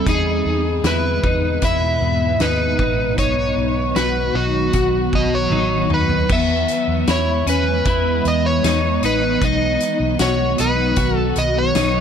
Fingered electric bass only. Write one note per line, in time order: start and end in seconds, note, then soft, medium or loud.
0.07 0.41 E2 medium
0.45 0.80 E2 medium
0.84 1.18 E2 medium
1.23 1.58 E2 medium
1.62 1.96 E2 medium
2.01 2.35 E2 loud
2.39 2.74 D#2 medium
2.79 3.13 A1 medium
3.18 3.52 B1 medium
3.57 3.91 B1 medium
3.96 4.30 B1 medium
4.34 4.69 B1 medium
4.74 5.08 B1 medium
5.13 5.47 B1 medium
5.50 5.85 A1 medium
5.90 6.25 D#2 medium
6.29 6.64 E2 loud
6.87 7.05 E2 medium
7.08 7.42 E2 loud
7.46 7.81 E2 loud
7.86 8.20 E2 medium
8.25 8.59 E2 loud
8.64 8.98 E2 loud
9.02 9.37 A1 medium
9.42 9.76 B1 loud
10.00 10.17 B1 medium
10.20 10.54 B1 loud
10.59 10.93 B1 medium
10.97 11.31 B1 medium
11.36 11.70 B1 medium
11.75 12.01 B1 medium